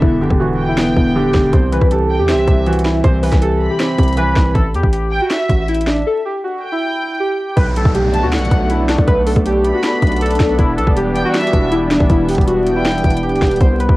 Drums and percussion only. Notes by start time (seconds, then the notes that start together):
0.02 kick
0.30 kick
0.77 finger snap, snare
0.97 kick
1.34 finger snap, kick, snare
1.53 kick, closed hi-hat
1.72 closed hi-hat
1.81 kick
1.91 closed hi-hat
2.29 finger snap, snare, closed hi-hat
2.48 kick, closed hi-hat
2.66 closed hi-hat
2.73 closed hi-hat
2.79 closed hi-hat
2.85 finger snap, snare
3.04 kick, closed hi-hat
3.23 closed hi-hat, open hi-hat
3.32 kick, snare, closed hi-hat
3.42 closed hi-hat
3.80 finger snap, snare, closed hi-hat
3.98 kick, closed hi-hat
4.03 closed hi-hat
4.08 closed hi-hat
4.13 closed hi-hat
4.17 closed hi-hat
4.36 finger snap, kick, snare
4.55 kick, closed hi-hat
4.74 closed hi-hat
4.83 kick
4.93 closed hi-hat
5.30 finger snap, snare, closed hi-hat
5.49 kick, closed hi-hat
5.68 closed hi-hat
5.75 closed hi-hat
5.81 closed hi-hat
5.87 finger snap, snare
7.57 kick, closed hi-hat
7.76 closed hi-hat
7.85 kick
7.95 closed hi-hat
8.14 closed hi-hat
8.32 finger snap, snare, closed hi-hat
8.39 closed hi-hat
8.45 closed hi-hat
8.51 kick, closed hi-hat
8.70 closed hi-hat
8.89 finger snap, snare, closed hi-hat
8.98 kick
9.08 kick, closed hi-hat
9.27 closed hi-hat, open hi-hat
9.36 kick, closed hi-hat
9.46 closed hi-hat
9.64 closed hi-hat
9.83 finger snap, snare, closed hi-hat
10.02 kick, closed hi-hat
10.07 closed hi-hat
10.12 closed hi-hat
10.16 closed hi-hat
10.21 closed hi-hat
10.26 closed hi-hat
10.31 closed hi-hat
10.35 closed hi-hat
10.40 finger snap, kick, snare, closed hi-hat
10.59 kick, closed hi-hat
10.78 closed hi-hat
10.87 kick
10.97 closed hi-hat
11.16 closed hi-hat
11.34 finger snap, snare, closed hi-hat
11.41 closed hi-hat
11.47 closed hi-hat
11.53 kick, closed hi-hat
11.72 closed hi-hat
11.91 finger snap, snare, closed hi-hat
12.00 kick
12.10 kick, closed hi-hat
12.29 closed hi-hat, open hi-hat
12.35 kick, closed hi-hat
12.41 closed hi-hat
12.48 closed hi-hat
12.66 closed hi-hat
12.85 finger snap, snare, closed hi-hat
12.91 closed hi-hat
12.98 closed hi-hat
13.04 kick, closed hi-hat
13.10 closed hi-hat
13.17 closed hi-hat
13.23 closed hi-hat
13.29 closed hi-hat
13.36 closed hi-hat
13.42 finger snap, kick, snare, closed hi-hat
13.47 closed hi-hat
13.51 closed hi-hat
13.56 closed hi-hat
13.61 kick, closed hi-hat
13.80 closed hi-hat
13.89 kick